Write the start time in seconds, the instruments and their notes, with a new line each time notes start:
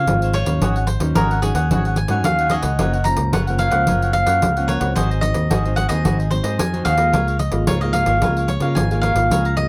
Already playing: cavaquinho C5 C#5 F5
0.07 fingered electric bass G#1, nylon-string guitar G#2 G#3 C4 F4, pandeiro
0.22 cavaquinho C5 C#5 F5, pandeiro
0.33 cavaquinho F4 C5 C#5 F5, pandeiro
0.46 fingered electric bass D#2, nylon-string guitar F#3 C#4 D#4, cavaquinho C5 C#5 F5, pandeiro
0.61 fingered electric bass G#1, nylon-string guitar G#2, cavaquinho F#4 G#4 C#5 F#5, pandeiro
0.76 cavaquinho G#4 C#5 F#5, pandeiro
0.87 cavaquinho C5, muted cavaquinho stroke, pandeiro
1.00 fingered electric bass D#2, nylon-string guitar F#3 C#4 D#4, pandeiro
1.15 fingered electric bass G#1, nylon-string guitar D#3, cavaquinho F#4 G#4 A#4 C#5 F#5, pandeiro
1.31 cavaquinho G#4 C#5 F#5, pandeiro
1.42 nylon-string guitar F#3 C#4 D#4, cavaquinho F#4 G#4 C#5 F#5, pandeiro
1.54 fingered electric bass D#2, cavaquinho G#4 C#5 F#5, pandeiro
1.70 fingered electric bass G#1, nylon-string guitar G#2 F#3 C#4 D#4, cavaquinho F#4 G#4 C#5 F#5, pandeiro
1.85 cavaquinho G#4 C#5 F#5, pandeiro
1.96 cavaquinho G#5, muted cavaquinho stroke, pandeiro
2.08 fingered electric bass G#2, nylon-string guitar F#3 C#4 D#4, cavaquinho G#4 C#5 F#5, pandeiro
2.24 fingered electric bass D#2, nylon-string guitar D#3, cavaquinho F5, pandeiro
2.39 cavaquinho G#4 C#5 F#5, pandeiro
2.50 nylon-string guitar F#3 C#4 D#4, cavaquinho F#4 G#4 C#5 D#5 F#5, pandeiro
2.63 fingered electric bass C#2, cavaquinho G#4 C#5 F#5, pandeiro
2.79 fingered electric bass F#1, nylon-string guitar F#2 F3 A#3 C#4, cavaquinho F4 A#4 C#5 F#5, pandeiro
2.93 cavaquinho A#4 C#5 F#5, pandeiro
3.04 nylon-string guitar F3 A#3 C#4, cavaquinho A#5, pandeiro
3.17 fingered electric bass C#2, pandeiro
3.33 fingered electric bass F#1, nylon-string guitar C#3, cavaquinho F4 A#4 C#5 F#5, pandeiro
3.47 nylon-string guitar F3 A#3 C#4, cavaquinho A#4 C#5 F#5, pandeiro
3.58 cavaquinho F4 A#4 C#5 F5 F#5, pandeiro
3.71 fingered electric bass C#2, nylon-string guitar F3 A#3 C#4, cavaquinho A#4 C#5 F#5, pandeiro
3.87 fingered electric bass F#1, nylon-string guitar F#2, cavaquinho F4 A#4 C#5 F#5, pandeiro
4.02 cavaquinho A#4 C#5 F#5, pandeiro
4.13 nylon-string guitar F3 A#3 C#4, cavaquinho F5, pandeiro
4.26 fingered electric bass F#2, cavaquinho A#4 C#5 F#5, pandeiro
4.42 fingered electric bass C#2, nylon-string guitar C#3, pandeiro
4.56 nylon-string guitar F3 A#3 C#4, cavaquinho A#4 C#5 F#5, pandeiro
4.67 cavaquinho F4 A#4 C#5 F#5, pandeiro
4.80 fingered electric bass C#2, nylon-string guitar F#3 C4 D#4, cavaquinho A#4 C#5 F#5, pandeiro
4.96 fingered electric bass G#1, nylon-string guitar G#2, cavaquinho F#4 G#4 C5 D#5, pandeiro
5.10 cavaquinho G#4 C5 D#5, pandeiro
5.21 nylon-string guitar F#3 C4 D#4, cavaquinho D#5, muted cavaquinho stroke, pandeiro
5.34 fingered electric bass D#2, pandeiro
5.50 fingered electric bass G#1, nylon-string guitar D#3, cavaquinho F#4 G#4 C5 D#5, pandeiro
5.64 nylon-string guitar F#3 C4 D#4, cavaquinho G#4 C5 D#5, pandeiro
5.76 cavaquinho F#4 G#4 C5 D#5 F#5, pandeiro
5.89 fingered electric bass D#2, nylon-string guitar F#3 C4 D#4, cavaquinho G#4 C5 D#5, pandeiro
6.05 fingered electric bass G#1, nylon-string guitar G#2, cavaquinho F#4 G#4 C5 D#5, pandeiro
6.19 cavaquinho G#4 C5 D#5, pandeiro
6.31 nylon-string guitar F#3 C4 D#4, cavaquinho C5, muted cavaquinho stroke, pandeiro
6.43 fingered electric bass G#2, cavaquinho G#4 C5 D#5, pandeiro
6.59 fingered electric bass F2, nylon-string guitar D#3, cavaquinho G#5, pandeiro
6.73 nylon-string guitar F#3 C4 D#4, cavaquinho G#4 C5 D#5, pandeiro
6.85 fingered electric bass D#2, cavaquinho F#4 G#4 C5 D#5 F5, pandeiro
6.98 nylon-string guitar G#3 A#3 F4, cavaquinho G#4 C5 D#5, pandeiro
7.12 fingered electric bass C#2, nylon-string guitar C#3, cavaquinho F4 A#4 C#5 F5, pandeiro
7.27 cavaquinho A#4 C#5 F5, pandeiro
7.39 cavaquinho D#5, muted cavaquinho stroke, pandeiro
7.52 fingered electric bass G#1, nylon-string guitar G#3 A#3 F4, pandeiro
7.67 fingered electric bass C#2, nylon-string guitar G#2, cavaquinho F4 A#4 C#5 F5, pandeiro
7.81 nylon-string guitar G#3 A#3 F4, cavaquinho A#4 C#5 D#5 F5, pandeiro
7.93 cavaquinho F4 A#4 C#5 F5, pandeiro
8.06 fingered electric bass G#1, nylon-string guitar G#3 A#3 F4, cavaquinho A#4 C#5 F5, pandeiro
8.22 fingered electric bass C#2, nylon-string guitar C#3 G#3 A#3 F4, cavaquinho F4 A#4 C#5 F5, pandeiro
8.37 cavaquinho A#4 C#5 F5, pandeiro
8.48 cavaquinho C#5, muted cavaquinho stroke, pandeiro
8.60 fingered electric bass C#3, nylon-string guitar G#3 A#3 F4, cavaquinho A#4 C#5 F5, pandeiro
8.75 fingered electric bass G#1, nylon-string guitar G#2, cavaquinho G#5, pandeiro
8.91 nylon-string guitar G#3 A#3 F4, cavaquinho A#4 C#5 F5, pandeiro
9.01 cavaquinho F4 A#4 C#5 F5, pandeiro
9.15 fingered electric bass G#1, nylon-string guitar G#3 A#3 F4, cavaquinho A#4 C#5 F5, pandeiro
9.30 fingered electric bass C#2, nylon-string guitar C#3, cavaquinho G#4 C#5 F5 A#5, pandeiro
9.45 cavaquinho C#5 F5 A#5, pandeiro
9.57 nylon-string guitar G#3 A#3 F4, cavaquinho D#5, pandeiro